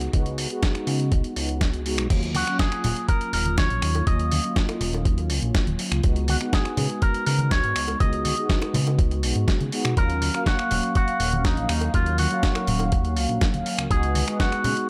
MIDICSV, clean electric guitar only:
0, 0, Header, 1, 2, 480
1, 0, Start_track
1, 0, Key_signature, -6, "minor"
1, 0, Tempo, 491803
1, 133, Time_signature, 4, 2, 24, 8
1, 14537, End_track
2, 0, Start_track
2, 0, Title_t, "Clean electric guitar"
2, 0, Program_c, 0, 27
2, 2296, Note_on_c, 0, 66, 78
2, 2531, Note_off_c, 0, 66, 0
2, 2534, Note_on_c, 0, 68, 84
2, 3007, Note_off_c, 0, 68, 0
2, 3011, Note_on_c, 0, 70, 99
2, 3245, Note_off_c, 0, 70, 0
2, 3257, Note_on_c, 0, 70, 85
2, 3493, Note_off_c, 0, 70, 0
2, 3497, Note_on_c, 0, 73, 97
2, 3970, Note_off_c, 0, 73, 0
2, 3974, Note_on_c, 0, 75, 95
2, 5374, Note_off_c, 0, 75, 0
2, 6138, Note_on_c, 0, 66, 80
2, 6202, Note_off_c, 0, 66, 0
2, 6378, Note_on_c, 0, 68, 84
2, 6855, Note_on_c, 0, 70, 95
2, 6870, Note_off_c, 0, 68, 0
2, 7080, Note_off_c, 0, 70, 0
2, 7092, Note_on_c, 0, 70, 91
2, 7331, Note_off_c, 0, 70, 0
2, 7334, Note_on_c, 0, 73, 96
2, 7807, Note_off_c, 0, 73, 0
2, 7811, Note_on_c, 0, 75, 100
2, 9213, Note_off_c, 0, 75, 0
2, 9734, Note_on_c, 0, 70, 108
2, 10180, Note_off_c, 0, 70, 0
2, 10217, Note_on_c, 0, 66, 99
2, 10689, Note_off_c, 0, 66, 0
2, 10700, Note_on_c, 0, 66, 98
2, 11178, Note_on_c, 0, 63, 86
2, 11191, Note_off_c, 0, 66, 0
2, 11405, Note_off_c, 0, 63, 0
2, 11417, Note_on_c, 0, 63, 83
2, 11659, Note_on_c, 0, 65, 93
2, 11662, Note_off_c, 0, 63, 0
2, 11895, Note_off_c, 0, 65, 0
2, 11899, Note_on_c, 0, 66, 87
2, 12817, Note_off_c, 0, 66, 0
2, 13570, Note_on_c, 0, 68, 106
2, 14052, Note_off_c, 0, 68, 0
2, 14056, Note_on_c, 0, 66, 101
2, 14520, Note_off_c, 0, 66, 0
2, 14537, End_track
0, 0, End_of_file